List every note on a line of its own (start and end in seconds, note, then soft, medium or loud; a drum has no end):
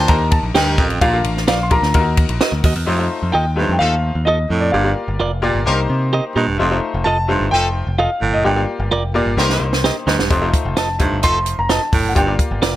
0.00 0.28 F3 loud
0.00 0.28 D4 loud
0.00 0.28 C5 loud
0.08 0.39 D#2 medium
0.08 0.83 D#4 medium
0.08 0.83 G4 medium
0.08 0.84 A#4 medium
0.08 0.33 A#5 loud
0.08 kick medium
0.08 ride medium
0.31 0.37 A5 medium
0.31 kick loud
0.31 ride medium
0.43 0.53 A#1 medium
0.54 0.78 D2 medium
0.54 0.74 G2 medium
0.54 0.88 G3 loud
0.54 0.88 D#4 loud
0.54 0.66 G4 medium
0.54 0.66 A#4 medium
0.54 0.88 A#4 loud
0.54 0.66 D#5 loud
0.54 1.03 G5 loud
0.54 snare loud
0.54 ride medium
0.78 0.98 A1 medium
0.78 0.97 F2 medium
0.78 kick loud
0.78 ride medium
0.90 ride soft
1.01 1.21 A#1 loud
1.01 1.20 A#2 medium
1.01 1.08 D4 medium
1.01 1.09 F4 medium
1.01 1.09 A#4 medium
1.01 1.47 F5 loud
1.01 kick loud
1.01 ride medium
1.12 1.46 D4 medium
1.12 1.47 F4 medium
1.12 1.47 A#4 medium
1.24 1.44 A1 loud
1.24 ride medium
1.37 snare soft
1.47 1.77 A#1 loud
1.47 1.58 F4 medium
1.47 1.59 A#4 medium
1.47 1.59 D5 medium
1.47 1.65 F5 medium
1.47 snare loud
1.47 ride medium
1.63 1.71 C6 medium
1.70 1.94 D4 medium
1.70 1.93 F4 medium
1.70 1.93 A#4 medium
1.70 2.60 A#5 medium
1.70 kick medium
1.70 ride medium
1.82 1.92 D2 medium
1.82 snare soft
1.94 2.24 D#2 loud
1.94 2.69 D#4 medium
1.94 2.00 F4 medium
1.94 2.69 A#4 medium
1.94 kick medium
1.94 ride medium
2.00 2.72 F#4 medium
2.17 kick loud
2.17 ride medium
2.29 2.39 A#1 medium
2.29 ride soft
2.41 2.52 F#4 medium
2.41 2.52 A#4 medium
2.41 2.52 D#5 loud
2.41 snare loud
2.41 ride medium
2.52 2.62 D2 medium
2.64 2.74 D#2 medium
2.64 2.72 F#4 medium
2.64 2.73 A#4 medium
2.64 2.73 D#5 medium
2.64 kick medium
2.64 open hi-hat soft
2.64 ride medium
2.76 2.86 E2 medium
2.76 ride soft
2.86 3.06 F2 medium
2.86 3.07 F2 medium
2.86 2.94 A3 medium
2.86 2.94 D#4 medium
2.86 2.94 F4 medium
2.86 2.94 C5 medium
2.98 3.32 A3 medium
2.98 3.32 D#4 medium
2.98 3.32 F4 medium
2.98 3.33 C5 medium
3.23 3.32 F2 medium
3.32 3.64 D#2 medium
3.32 3.44 F4 medium
3.32 3.45 A4 medium
3.32 3.45 D#5 medium
3.32 3.70 G5 medium
3.56 3.76 G2 medium
3.56 4.10 A3 medium
3.56 4.10 D#4 medium
3.56 4.11 F4 medium
3.56 3.63 B4 medium
3.63 4.13 C5 medium
3.69 3.79 F2 medium
3.69 3.79 G5 medium
3.79 4.10 D#2 medium
3.79 3.95 F3 medium
3.79 3.95 D#4 medium
3.79 3.95 A4 loud
3.79 4.23 F5 loud
4.15 4.45 D#2 medium
4.25 4.37 F4 medium
4.25 4.38 A4 medium
4.25 4.62 D#5 medium
4.25 4.38 D#5 medium
4.50 4.70 F2 medium
4.50 4.69 A2 medium
4.61 4.73 D5 medium
4.72 4.93 G1 medium
4.72 4.92 G2 medium
4.72 4.80 A#3 medium
4.72 4.80 F4 medium
4.72 4.81 G4 medium
4.72 4.81 D5 medium
4.72 6.08 F5 medium
4.84 5.18 A#3 medium
4.84 5.18 F4 medium
4.84 5.18 G4 medium
4.84 5.19 D5 medium
5.08 5.18 G1 medium
5.20 5.49 F1 medium
5.20 5.30 F4 medium
5.20 5.31 A#4 medium
5.20 5.31 D5 medium
5.42 5.62 A#2 medium
5.42 5.64 A#3 medium
5.42 5.66 F4 medium
5.42 5.65 G4 medium
5.42 5.67 D5 medium
5.55 5.64 G1 medium
5.66 5.86 C2 medium
5.66 5.82 G3 medium
5.66 6.40 A#3 medium
5.66 5.72 D4 medium
5.66 5.81 D#4 medium
5.66 6.41 G4 medium
5.66 5.82 A#4 loud
5.66 6.41 C5 loud
5.72 6.43 D#4 medium
5.90 6.19 C3 medium
6.13 6.23 G4 medium
6.13 6.24 A#4 medium
6.13 6.24 D#5 medium
6.36 6.55 G2 medium
6.36 6.46 A#2 medium
6.36 6.44 G4 medium
6.36 6.45 A#4 medium
6.36 6.45 D#5 medium
6.48 6.58 E1 medium
6.58 6.79 F1 loud
6.58 6.78 F2 medium
6.58 6.65 A3 medium
6.58 6.66 D#4 medium
6.58 6.66 F4 medium
6.58 6.66 C5 medium
6.70 7.04 A3 medium
6.70 7.04 D#4 medium
6.70 7.05 F4 medium
6.70 7.05 C5 medium
6.94 7.04 F1 medium
7.04 7.35 F1 medium
7.04 7.16 F4 medium
7.04 7.17 A4 medium
7.04 7.17 D#5 medium
7.04 7.48 A5 loud
7.28 7.48 G2 medium
7.28 7.82 A3 medium
7.28 7.82 D#4 medium
7.28 7.82 F4 medium
7.28 7.83 C5 medium
7.41 7.50 G1 medium
7.51 7.82 F1 medium
7.51 7.67 F3 medium
7.51 7.67 D#4 loud
7.51 7.67 A4 loud
7.51 8.00 G5 loud
7.87 8.07 F1 medium
7.98 8.09 F4 medium
7.98 8.09 A4 medium
7.98 8.10 D#5 medium
7.98 8.34 F5 medium
8.21 8.32 G1 medium
8.21 8.40 A2 medium
8.33 8.44 F#1 medium
8.33 8.45 D#5 medium
8.44 8.65 G1 medium
8.44 8.64 G2 medium
8.44 8.51 A#3 medium
8.44 8.51 F4 medium
8.44 8.51 G4 medium
8.44 8.52 D5 medium
8.44 9.80 G5 medium
8.56 8.90 A#3 medium
8.56 8.90 F4 medium
8.56 8.90 G4 medium
8.56 8.90 D5 medium
8.80 8.90 G1 medium
8.91 9.21 F1 medium
8.91 9.02 F4 medium
8.91 9.02 A#4 medium
8.91 9.03 D5 medium
9.14 9.33 A#2 medium
9.14 9.36 A#3 medium
9.14 9.38 F4 medium
9.14 9.37 G4 medium
9.14 9.38 D5 loud
9.26 9.36 G1 medium
9.37 9.57 C2 medium
9.37 9.67 G3 loud
9.37 10.12 A#3 medium
9.37 10.12 D#4 medium
9.37 9.67 D#4 medium
9.37 10.12 G4 medium
9.37 9.67 A#4 loud
9.37 10.13 C5 loud
9.37 snare medium
9.50 snare medium
9.60 9.90 C2 medium
9.73 snare medium
9.84 9.95 G4 medium
9.84 9.95 A#4 medium
9.84 9.96 D#5 medium
9.84 snare medium
10.07 10.17 D2 loud
10.07 10.26 G2 medium
10.07 10.15 G4 medium
10.07 10.16 A#4 medium
10.07 10.16 D#5 medium
10.07 snare medium
10.19 10.29 E1 medium
10.19 snare medium
10.30 10.50 F1 medium
10.30 10.49 F2 medium
10.30 10.37 A3 medium
10.30 10.37 D#4 medium
10.30 10.37 F4 medium
10.30 10.38 C5 loud
10.30 kick loud
10.30 closed hi-hat medium
10.41 10.75 A3 medium
10.41 10.75 D#4 medium
10.41 10.76 F4 medium
10.41 10.76 C5 medium
10.54 kick medium
10.54 closed hi-hat medium
10.65 10.75 F1 loud
10.77 10.87 F4 medium
10.77 10.88 A4 medium
10.77 10.88 D#5 medium
10.77 11.25 A5 medium
10.77 snare loud
10.77 closed hi-hat medium
10.99 11.19 G2 medium
10.99 11.53 A3 medium
10.99 11.53 D#4 medium
10.99 11.54 F4 medium
10.99 11.54 C5 medium
10.99 kick medium
10.99 closed hi-hat medium
11.12 11.22 G1 medium
11.23 11.53 F1 medium
11.23 11.38 F3 medium
11.23 11.38 D#4 loud
11.23 11.38 A4 loud
11.23 11.59 C6 loud
11.23 kick medium
11.23 closed hi-hat medium
11.46 closed hi-hat medium
11.59 11.78 F1 medium
11.59 11.70 A#5 medium
11.69 11.80 F4 medium
11.69 11.81 A4 medium
11.69 11.81 D#5 medium
11.69 12.07 A5 medium
11.69 snare loud
11.69 closed hi-hat medium
11.92 12.03 G1 medium
11.92 12.12 A2 medium
11.92 kick medium
11.92 open hi-hat soft
12.05 12.15 F#1 medium
12.05 12.16 F#5 medium
12.15 12.36 G1 loud
12.15 12.35 G2 medium
12.15 12.22 A#3 medium
12.15 12.22 F4 medium
12.15 12.23 G4 medium
12.15 12.23 D5 medium
12.15 12.76 G5 medium
12.15 kick medium
12.15 closed hi-hat medium
12.27 12.61 A#3 medium
12.27 12.61 F4 medium
12.27 12.61 G4 medium
12.27 12.61 D5 medium
12.39 kick medium
12.39 closed hi-hat medium
12.51 12.61 G1 medium
12.62 12.76 F1 medium
12.62 12.73 F4 medium
12.62 12.73 A#4 medium
12.62 12.73 D5 medium
12.62 snare loud
12.62 closed hi-hat medium